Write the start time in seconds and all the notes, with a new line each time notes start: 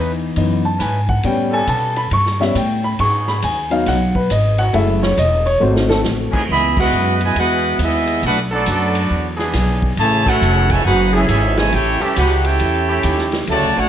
Already playing: E2 E3 B3 C#4 D#4 B4
0.36 F#2 E3 B3 D#4, ride
0.65 A5
0.79 G#2 E3 C#4 D#4 B4 G#5, hi-hat pedal, ride
1.09 F#5, kick
1.23 A2 G3 B3 C#4 G5, ride
1.50 G3 B3 C#4 A4 G#5
1.67 B2 A5, hi-hat pedal, ride
1.96 B5, ride
2.11 G2 C#6, ride
2.26 snare
2.40 G3 B3 C#4 E5, snare
2.55 A2 G5, hi-hat pedal, ride
2.84 B5
2.99 G#2 F#3 B3 D#4 G#4 C#6, ride
3.28 B5, snare
3.42 D#2 G#5, hi-hat pedal, ride
3.70 F#3 B3 D#4 F5, ride
3.86 B1 F#5, snare, ride
4.15 B4, kick
4.30 G#1 D#5, hi-hat pedal, ride
4.58 F#3 C#4 E4 F#4 F#5, ride
4.72 F#1 F#3 G#3 A3 C#4 E4 A4 E5, ride
5.03 C#5, snare
5.17 E1 D#5, hi-hat pedal, ride
5.46 C#5, ride
5.60 G#1 A3 C4 F#4 C5
5.76 snare
5.89 A4, snare
6.04 A1, snare, hi-hat pedal
6.31 E3 C#4 D#4 G#4, muted upright bass stroke, kick, crash
6.49 C#2 E3 G#3 B3 G#4 D#5 E5 B5
6.77 G#3 B3 E4 F#4 B4 D#5 F#5, kick, crash
6.92 F#2, hi-hat pedal
7.21 B2 E3 G#3 E4 B4, ride
7.25 D#5 G#5
7.35 E2 G#3 B3 E4 F#4 F#5, ride
7.40 B4 D#5
7.79 D#2 G#3 B3 E4, hi-hat pedal, ride
7.84 B3 G#4 D#5 E5
8.07 ride
8.23 B1 A3 D4 F#4 A4 B4, ride
8.27 D4 F#5
8.51 F#3 A3 B3 D4 A4
8.56 B3 F#4 A4 D5
8.66 F#2 F#3 A3 D4, hi-hat pedal, ride
8.70 B3 F#4 A4 D5
8.95 ride
9.10 E2
9.37 E3 B3 D4 G#4, snare
9.53 B1, snare, hi-hat pedal, ride
9.82 kick
9.97 A1 C#3 E3 A3 E4 G#4 C#5 A5, ride
10.24 E3 A3 C#4 F#4 A4 C#5, kick, crash
10.28 E4 F#5
10.41 F1, hi-hat pedal
10.70 C#3 E3 G#3 E4 A4 C#5 G#5, kick, ride
10.85 F#1 D#4 F#4 G#4 B4 F#5
11.12 E3 G#3 A3 C#4 E4 G#4 A4 E5
11.27 G#1 G#3 C#4 E4 G#4 A4 E5, hi-hat pedal, ride
11.56 C#3 E3 G#3 E4 A4 C#5 G#5, snare, ride
11.71 A1 C#4 E4 G4 A4 C#5 G5, ride
12.00 E3 G3 A3 C#4 E4 G4 A4 E5, muted upright bass stroke
12.16 C#2 D#4 F#4 G4 B4 F#5, hi-hat pedal, ride
12.44 C#4 E4 G4 A4 C#5 G5, ride
12.60 E2, ride
12.88 A3 C#4 E4 G4
13.03 D#2, hi-hat pedal, ride
13.18 snare
13.32 snare, ride
13.47 D2 C#3 F#3 A3 F#4 C#5 D5 A5, ride
13.62 C#2
13.76 A1 A3 D4 F#4 A4 C#5 F#5